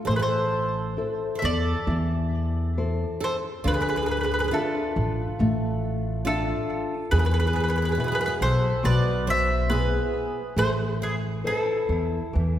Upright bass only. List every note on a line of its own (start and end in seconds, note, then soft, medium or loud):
0.07 0.95 A1 medium
1.43 1.72 E2 medium
1.87 3.03 E2 medium
3.65 4.50 D2 medium
4.96 5.24 A1 medium
5.40 6.51 A1 medium
7.12 7.96 E2 medium
8.41 8.69 B1 medium
8.84 9.97 B1 medium
10.56 11.43 A1 medium
11.89 12.19 E2 medium
12.35 12.59 E2 medium